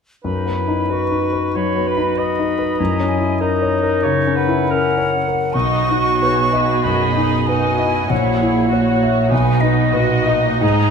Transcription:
0.24 1.52 F#2 soft
0.24 0.59 D#4 soft
0.24 1.57 B4 soft
0.24 0.94 B5 soft
0.46 0.81 B3 soft
0.57 0.91 E4 soft
0.68 1.04 D#4 soft
0.90 1.21 F#4 soft
0.90 1.25 B4 soft
0.90 1.58 C#6 soft
1.11 1.46 D#4 soft
1.22 2.81 F#4 soft
1.33 1.68 B4 soft
1.55 1.89 F#3 soft
1.55 1.89 C#5 soft
1.55 2.17 B5 soft
1.75 2.09 B3 soft
1.88 2.20 B4 soft
1.97 2.30 D#4 soft
2.18 2.51 B4 soft
2.18 3.41 D#5 soft
2.18 2.80 B5 soft
2.39 2.71 D#4 soft
2.59 2.79 B4 soft
2.79 4.01 F#2 soft
2.79 3.42 E4 soft
2.79 3.10 A#5 soft
3.00 3.33 C#4 soft
3.08 3.43 G#5 soft
3.19 3.53 E4 soft
3.40 4.70 D#4 soft
3.40 3.74 A#4 soft
3.40 4.05 D#5 soft
3.40 4.09 A#5 soft
3.62 3.96 C#5 soft
3.83 4.17 A#4 soft
4.03 4.39 C#3 soft
4.03 4.38 C#5 soft
4.27 4.63 C#4 soft
4.35 4.72 B4 soft
4.35 5.55 F#5 medium
4.48 4.87 E4 soft
4.71 5.12 C#4 soft
4.71 5.13 A#4 soft
4.71 5.16 A#4 soft
4.98 5.44 C#5 soft
5.28 5.54 A#4 soft
5.53 6.81 B1 soft
5.53 8.07 B2 soft
5.53 5.86 D#4 soft
5.53 6.17 F#4 soft
5.53 6.17 D#5 soft
5.53 6.85 C#6 medium
5.88 6.41 D#4 soft
5.88 6.83 F#4 soft
6.21 7.48 G#4 soft
6.21 6.72 B4 soft
6.21 6.53 C#5 soft
6.53 6.85 B4 soft
6.53 7.04 D#5 soft
6.84 7.36 F#2 soft
6.84 7.16 F#4 soft
6.84 7.47 D#5 soft
6.84 7.48 B5 soft
7.15 7.46 D#4 soft
7.15 7.67 D#4 soft
7.47 7.79 D#4 soft
7.47 8.10 F#4 soft
7.47 7.99 B4 soft
7.47 8.10 D#5 soft
7.47 8.11 G#5 medium
7.79 8.70 E4 soft
7.79 8.10 D#5 soft
8.10 9.28 A#1 soft
8.10 9.30 A#2 soft
8.10 8.41 F#4 soft
8.10 8.70 C#5 soft
8.10 9.29 F#5 soft
8.39 8.90 E4 soft
8.39 8.71 G#4 soft
8.71 9.31 F#4 soft
8.71 9.91 F#4 soft
8.71 9.30 C#5 soft
8.71 9.21 C#5 soft
9.03 9.32 E5 soft
9.30 9.91 B1 soft
9.30 9.93 B2 soft
9.30 9.92 D#4 soft
9.30 9.93 B4 soft
9.30 9.62 G#5 medium
9.60 10.13 D#4 soft
9.60 10.64 D#5 soft
9.92 10.63 A#2 soft
9.92 10.27 F#4 soft
9.92 10.61 F#4 soft
9.92 10.49 B4 soft
9.92 10.61 D#5 soft
10.26 10.90 D#4 soft
10.26 10.62 D#5 soft
10.61 10.90 G#2 soft
10.61 10.90 G#4 soft
10.61 10.90 D#5 soft
10.61 10.90 A#5 medium

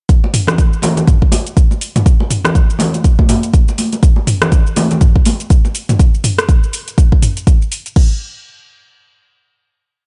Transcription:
0.09 kick loud
0.09 closed hi-hat soft
0.09 shaker medium
0.24 muted conga medium
0.34 mid tom medium
0.34 open hi-hat loud
0.34 shaker medium
0.47 cross-stick medium
0.47 closed hi-hat medium
0.47 low conga loud
0.47 shaker soft
0.58 kick loud
0.58 closed hi-hat soft
0.58 muted conga soft
0.58 shaker medium
0.73 shaker soft
0.82 open hi-hat medium
0.82 muted conga medium
0.82 high conga loud
0.82 low conga loud
0.82 shaker medium
0.97 closed hi-hat medium
0.97 low conga medium
0.97 shaker soft
1.07 kick loud
1.07 closed hi-hat soft
1.07 mid tom medium
1.07 muted conga soft
1.07 shaker medium
1.22 kick medium
1.32 open hi-hat loud
1.32 muted conga medium
1.32 high conga loud
1.32 shaker medium
1.47 closed hi-hat medium
1.47 shaker soft
1.57 kick loud
1.57 closed hi-hat soft
1.57 shaker medium
1.71 muted conga soft
1.71 shaker soft
1.81 open hi-hat medium
1.81 shaker medium
1.96 closed hi-hat medium
1.96 mid tom medium
1.96 muted conga medium
1.96 shaker soft
2.06 kick loud
2.06 closed hi-hat soft
2.06 shaker medium
2.20 muted conga medium
2.31 mid tom medium
2.31 open hi-hat loud
2.31 shaker loud
2.45 cross-stick medium
2.45 closed hi-hat medium
2.45 low conga loud
2.45 shaker soft
2.55 kick loud
2.55 closed hi-hat soft
2.55 muted conga soft
2.55 shaker medium
2.70 shaker soft
2.79 open hi-hat medium
2.79 muted conga medium
2.79 high conga loud
2.79 low conga loud
2.79 shaker medium
2.94 closed hi-hat medium
2.94 high conga medium
2.94 shaker soft
3.04 kick loud
3.04 closed hi-hat soft
3.04 muted conga soft
3.04 shaker medium
3.19 kick medium
3.19 high conga medium
3.29 mid tom medium
3.29 open hi-hat medium
3.29 muted conga medium
3.29 high conga loud
3.29 shaker loud
3.43 closed hi-hat medium
3.43 shaker soft
3.53 kick loud
3.53 closed hi-hat soft
3.53 shaker medium
3.68 muted conga soft
3.68 shaker soft
3.78 open hi-hat medium
3.78 high conga medium
3.78 shaker medium
3.93 closed hi-hat medium
3.93 muted conga soft
3.93 shaker soft
4.03 kick loud
4.03 closed hi-hat soft
4.03 shaker medium
4.16 muted conga soft
4.27 mid tom medium
4.27 open hi-hat medium
4.27 shaker loud
4.42 cross-stick medium
4.42 closed hi-hat medium
4.42 low conga loud
4.42 shaker soft
4.52 kick loud
4.52 closed hi-hat soft
4.52 muted conga soft
4.52 shaker medium
4.67 shaker soft
4.76 open hi-hat medium
4.76 muted conga medium
4.76 high conga loud
4.76 low conga loud
4.76 shaker loud
4.91 closed hi-hat medium
4.91 low conga medium
4.91 shaker soft
5.01 kick loud
5.01 closed hi-hat soft
5.01 mid tom medium
5.01 muted conga soft
5.01 shaker medium
5.16 kick medium
5.25 open hi-hat medium
5.25 muted conga soft
5.25 high conga loud
5.25 shaker loud
5.40 closed hi-hat medium
5.40 shaker soft
5.50 kick loud
5.50 closed hi-hat soft
5.50 shaker medium
5.65 muted conga soft
5.65 shaker soft
5.75 open hi-hat medium
5.75 shaker loud
5.89 closed hi-hat medium
5.89 mid tom medium
5.89 muted conga soft
5.89 shaker soft
5.99 kick loud
5.99 closed hi-hat soft
5.99 shaker medium
6.14 shaker soft
6.24 mid tom loud
6.24 open hi-hat medium
6.24 shaker loud
6.39 cross-stick medium
6.39 closed hi-hat medium
6.39 shaker soft
6.49 kick loud
6.49 closed hi-hat soft
6.49 shaker medium
6.63 shaker soft
6.73 open hi-hat medium
6.73 shaker loud
6.88 closed hi-hat medium
6.88 shaker soft
6.98 kick loud
6.98 closed hi-hat soft
6.98 shaker medium
7.12 kick medium
7.22 mid tom medium
7.22 open hi-hat medium
7.22 shaker loud
7.37 closed hi-hat medium
7.37 shaker soft
7.47 kick loud
7.47 closed hi-hat soft
7.47 shaker medium
7.62 shaker soft
7.72 open hi-hat medium
7.72 shaker medium
7.86 closed hi-hat medium
7.86 shaker soft
7.96 kick loud
7.96 crash medium

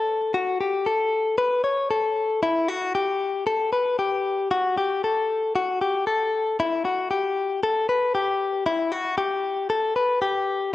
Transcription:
0.00 0.31 A4 medium
0.34 0.60 F#4 loud
0.61 0.87 G4 medium
0.86 1.35 A4 medium
1.38 1.64 B4 medium
1.64 1.90 C#5 medium
1.91 2.40 A4 medium
2.43 2.68 E4 loud
2.68 2.94 F#4 medium
2.95 3.44 G4 medium
3.47 3.72 A4 medium
3.73 3.98 B4 medium
3.99 4.48 G4 medium
4.51 4.77 F#4 loud
4.77 5.03 G4 medium
5.04 5.52 A4 medium
5.56 5.81 F#4 medium
5.82 6.07 G4 medium
6.07 6.56 A4 medium
6.60 6.84 E4 loud
6.85 7.10 F#4 medium
7.11 7.60 G4 medium
7.63 7.89 A4 medium
7.89 8.14 B4 medium
8.15 8.63 G4 medium
8.66 8.92 E4 loud
8.92 9.17 F#4 medium
9.18 9.67 G4 medium
9.70 9.96 A4 medium
9.96 10.21 B4 medium
10.22 10.71 G4 medium

